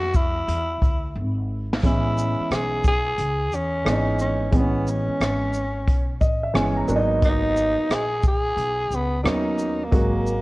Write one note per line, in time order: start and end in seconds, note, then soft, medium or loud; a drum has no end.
0.00 0.45 F2 medium
0.00 0.18 F#4 loud
0.14 1.17 E4 medium
0.14 kick medium
0.14 shaker soft
0.48 0.80 E2 loud
0.48 closed hi-hat medium
0.82 1.17 D2 medium
0.82 kick medium
0.82 closed hi-hat soft
0.82 shaker soft
1.16 1.80 G#1 medium
1.73 snare medium
1.83 2.36 A1 loud
1.83 2.87 E3 medium
1.83 2.87 G#3 medium
1.83 2.87 B3 medium
1.83 2.87 C#4 medium
1.83 2.55 E4 loud
1.83 kick medium
1.83 closed hi-hat medium
2.18 shaker soft
2.39 muted upright bass stroke soft
2.50 3.15 B1 medium
2.50 2.86 G#4 loud
2.50 cross-stick medium
2.50 closed hi-hat medium
2.84 3.57 G#4 loud
2.84 kick medium
2.84 shaker soft
3.18 3.52 C#2 medium
3.18 closed hi-hat medium
3.52 3.84 E2 medium
3.52 4.21 C#4 loud
3.52 closed hi-hat soft
3.52 shaker soft
3.85 4.50 G#1 medium
3.85 4.42 E3 medium
3.85 4.42 G#3 medium
3.85 4.42 B3 medium
3.85 3.94 D4 medium
3.85 cross-stick loud
3.85 closed hi-hat medium
3.93 4.46 D#4 medium
4.19 4.58 C#4 medium
4.19 shaker medium
4.52 5.06 A1 loud
4.52 5.56 E3 medium
4.52 5.56 G#3 medium
4.52 5.57 B3 medium
4.52 4.62 C4 medium
4.52 kick medium
4.52 closed hi-hat medium
4.56 4.91 B3 medium
4.56 5.60 C#4 medium
4.88 6.23 C#4 medium
4.88 shaker soft
5.08 muted upright bass stroke soft
5.20 5.88 G#1 medium
5.20 cross-stick loud
5.20 closed hi-hat medium
5.54 shaker soft
5.88 6.20 B1 medium
5.88 kick medium
5.88 closed hi-hat medium
6.21 6.53 A1 medium
6.21 6.42 D#5 medium
6.21 kick medium
6.21 shaker soft
6.43 6.54 E5 medium
6.54 6.87 G1 medium
6.54 6.88 E3 medium
6.54 6.88 G#3 medium
6.54 6.87 B3 medium
6.54 6.89 C#4 medium
6.54 6.75 G#5 medium
6.54 cross-stick loud
6.54 closed hi-hat medium
6.77 7.19 A#5 medium
6.88 7.74 G#1 medium
6.88 7.98 F#3 medium
6.88 7.99 A#3 medium
6.88 7.99 B3 medium
6.88 6.98 D4 medium
6.88 shaker medium
6.96 8.02 D#4 loud
7.22 7.95 D#4 loud
7.22 kick medium
7.22 closed hi-hat medium
7.57 shaker soft
7.78 muted upright bass stroke soft
7.90 8.54 A#1 medium
7.90 8.25 G#4 loud
7.90 cross-stick medium
7.90 closed hi-hat medium
8.23 kick medium
8.23 shaker soft
8.28 8.97 G#4 loud
8.57 8.89 B1 medium
8.57 closed hi-hat medium
8.90 9.23 C#2 medium
8.90 shaker soft
8.95 9.22 B3 medium
9.23 9.89 D#2 medium
9.23 9.81 F#3 medium
9.23 9.81 A#3 medium
9.23 9.81 B3 medium
9.23 9.81 C#4 medium
9.23 9.30 D4 medium
9.23 cross-stick loud
9.23 closed hi-hat medium
9.29 9.86 D#4 loud
9.59 shaker medium
9.84 10.42 A#3 medium
9.91 10.42 G#1 medium
9.91 10.42 F#3 medium
9.91 10.42 G#3 medium
9.91 10.42 A#3 medium
9.91 10.42 F#4 medium
9.91 kick loud
9.91 closed hi-hat medium
10.27 shaker soft